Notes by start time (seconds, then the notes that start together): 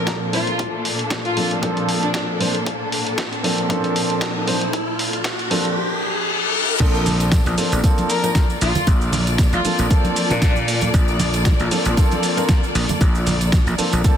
Already playing: A#2 F3 A#3 C4 D4 A4, riser
0.07 kick, snare, closed hi-hat
0.33 F3 A#3 C4 D4 F4 C5, open hi-hat
0.47 closed hi-hat
0.59 kick, closed hi-hat
0.85 open hi-hat
0.99 closed hi-hat
1.10 kick, snare, closed hi-hat
1.25 F4, closed hi-hat
1.37 F3 A#3 C4 D4 A4, open hi-hat
1.51 closed hi-hat
1.62 F3 A#3 C4 D4 A4, kick, closed hi-hat
1.77 closed hi-hat
1.89 open hi-hat
2.03 D4, closed hi-hat
2.14 D4, kick, snare, closed hi-hat
2.40 F3 A#3 C4 D4 C5, open hi-hat
2.55 closed hi-hat
2.66 kick, closed hi-hat
2.92 open hi-hat
3.07 closed hi-hat
3.18 kick, snare, closed hi-hat
3.33 closed hi-hat
3.43 F3 A#3 C4 D4 A4, open hi-hat
3.58 closed hi-hat
3.69 F3 A#3 C4 D4 A4, kick, closed hi-hat
3.84 closed hi-hat
3.96 open hi-hat
4.10 closed hi-hat
4.21 kick, snare, closed hi-hat
4.47 F3 A#3 C4 D4 C5, open hi-hat
4.61 closed hi-hat
4.73 kick, closed hi-hat
4.99 open hi-hat
5.13 closed hi-hat
5.24 kick, snare, closed hi-hat
5.39 closed hi-hat
5.50 F3 A#3 C4 D4 A4, open hi-hat
5.65 closed hi-hat
5.77 reverse cymbal
6.79 A#1 F3 A#3 C4 D4 F4 A4 D5, kick, closed hi-hat, crash, tambourine, shaker
6.94 tambourine, shaker
7.06 open hi-hat, high conga, low conga, shaker
7.20 closed hi-hat, tambourine, shaker
7.32 kick, snare, closed hi-hat, tambourine, shaker
7.46 A#1, closed hi-hat, tambourine, high conga, shaker
7.57 F3 A#3 C4 D4 A4, open hi-hat, shaker
7.72 A#1, closed hi-hat, tambourine, shaker
7.83 F3 A#3 C4 D4 A4, kick, closed hi-hat, tambourine, shaker
7.98 closed hi-hat, tambourine, high conga, shaker
8.10 A#4, open hi-hat, shaker
8.23 F3 A#3 C4 D4 A#4, closed hi-hat, tambourine, shaker
8.35 kick, snare, closed hi-hat, tambourine, high conga, shaker
8.50 tambourine, shaker
8.61 A#1 F4, open hi-hat, shaker
8.75 closed hi-hat, tambourine, high conga, low conga, shaker
8.87 A#1, kick, closed hi-hat, tambourine, shaker
9.01 tambourine, shaker
9.12 open hi-hat, high conga, low conga, shaker
9.27 closed hi-hat, tambourine, shaker
9.38 kick, snare, closed hi-hat, tambourine, shaker
9.53 A#1 F4, closed hi-hat, tambourine, high conga, shaker
9.64 F3 A#3 C4 D4 A4, muted slap bass stroke, open hi-hat, shaker
9.79 A#1, closed hi-hat, tambourine, shaker
9.90 F3 A#3 C4 D4 A4, kick, closed hi-hat, tambourine, shaker
10.04 closed hi-hat, tambourine, high conga, shaker
10.16 open hi-hat, shaker
10.30 A#2 F3 A#3 C4 D4 A#4, snare, closed hi-hat, tambourine, shaker
10.42 D4, kick, snare, closed hi-hat, tambourine, high conga, shaker
10.56 tambourine, shaker
10.68 open hi-hat, shaker
10.81 closed hi-hat, tambourine, high conga, shaker
10.94 A#1, kick, closed hi-hat, tambourine, shaker
11.08 tambourine, shaker
11.19 open hi-hat, high conga, low conga, shaker
11.33 closed hi-hat, tambourine, shaker
11.45 kick, snare, closed hi-hat, tambourine, shaker
11.59 A#1, closed hi-hat, tambourine, high conga, shaker
11.71 F3 A#3 C4 D4 A4, open hi-hat, shaker
11.85 A#1, closed hi-hat, tambourine, shaker
11.97 F3 A#3 C4 D4 A4, kick, closed hi-hat, tambourine, shaker
12.12 closed hi-hat, tambourine, high conga, shaker
12.23 open hi-hat, shaker
12.37 F3 A#3 C4 D4 A#4, closed hi-hat, tambourine, shaker
12.49 kick, snare, closed hi-hat, tambourine, high conga, shaker
12.63 tambourine, shaker
12.75 A#1, open hi-hat, shaker
12.89 closed hi-hat, tambourine, high conga, low conga, shaker
13.01 A#1, kick, closed hi-hat, tambourine, shaker
13.15 tambourine, shaker
13.27 open hi-hat, high conga, low conga, shaker
13.41 closed hi-hat, tambourine, shaker
13.52 kick, snare, closed hi-hat, tambourine, shaker
13.67 A#1, closed hi-hat, tambourine, high conga, shaker
13.78 F3 A#3 C4 D4 A4, muted slap bass stroke, open hi-hat, shaker
13.93 A#1, closed hi-hat, tambourine, shaker
14.04 F3 A#3 C4 D4 A4, kick, closed hi-hat, tambourine, shaker